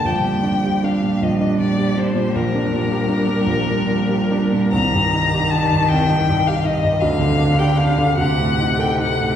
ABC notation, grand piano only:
X:1
M:12/8
L:1/16
Q:3/8=52
K:Cdor
V:1 name="Grand piano" clef=bass
B,,, B,, D G D B,, B,,, D B,, G D B,, B,,, D B,, G D B,, B,,, D B,, G D B,, | C,, G,, E G E G,, C,, E G,, G E G,, D,, D, D G D D, D,, A,, E A E A,, |]